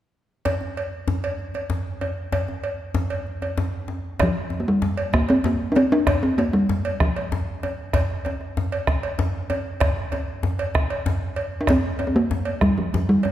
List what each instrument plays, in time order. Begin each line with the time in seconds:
0.45 cowbell, djembe slap, djembe bass
0.61 djembe tone
0.77 cowbell
1.08 djembe slap, djembe tone, djembe bass
1.24 cowbell
1.39 djembe slap
1.54 cowbell, djembe tone
1.70 djembe slap, djembe bass
2.01 cowbell, djembe tone
2.32 cowbell, djembe slap, djembe bass
2.48 djembe tone
2.64 cowbell
2.95 djembe slap, djembe tone, djembe bass
3.10 cowbell
3.27 djembe slap
3.42 cowbell, djembe tone
3.58 djembe slap, djembe bass
3.88 djembe tone
4.19 talking drum F3, bombo rim, bombo low, cowbell, djembe slap, djembe bass
4.35 djembe slap
4.50 djembe tone
4.60 talking drum A#3
4.68 talking drum G3, bombo rim
4.82 djembe slap, djembe bass
4.97 cowbell
5.13 talking drum A#3, bombo rim, bombo low, djembe slap, djembe tone
5.29 talking drum C4, cowbell
5.44 talking drum A#3, bombo rim, djembe slap, djembe bass
5.72 talking drum D4, djembe tone
5.76 talking drum C4, bombo rim, cowbell
5.92 talking drum D4
6.07 bombo rim, bombo low, cowbell, djembe slap, djembe bass
6.23 talking drum C4, djembe slap
6.38 talking drum A#3, cowbell, djembe tone
6.53 talking drum G3, bombo rim
6.69 djembe slap, djembe bass
6.85 cowbell
7.00 talking drum F3, bombo rim, bombo low, djembe slap, djembe tone
7.16 cowbell
7.32 bombo rim, djembe slap, djembe bass
7.63 bombo rim, cowbell, djembe tone
7.93 bombo rim, bombo low, cowbell, djembe slap, djembe bass
8.10 djembe slap
8.25 cowbell, djembe tone
8.41 bombo rim
8.57 djembe slap, djembe bass
8.72 cowbell
8.87 bombo rim, bombo low, djembe slap, djembe tone
9.03 cowbell
9.18 bombo rim, djembe slap, djembe bass
9.50 bombo rim, cowbell, djembe tone
9.80 bombo rim, bombo low, cowbell, djembe slap, djembe bass
9.97 bombo rim
10.12 cowbell, djembe tone
10.43 djembe slap, djembe bass
10.59 bombo rim, cowbell
10.75 bombo rim, bombo low, djembe tone
10.90 cowbell, djembe slap
11.06 bombo rim, djembe slap, djembe bass
11.22 djembe slap
11.36 bombo rim, cowbell, djembe slap
11.61 talking drum D4
11.67 talking drum C4, bombo rim, bombo low, cowbell, djembe slap, djembe bass
11.84 djembe slap
11.99 cowbell, djembe tone
12.07 talking drum C4
12.15 talking drum A#3, bombo rim
12.31 djembe slap, djembe bass
12.45 cowbell
12.61 talking drum G3, bombo rim, bombo low, djembe slap, djembe tone
12.78 talking drum F3
12.93 talking drum F3, bombo rim, djembe slap, djembe bass
13.09 talking drum G3
13.23 bombo rim, cowbell, djembe tone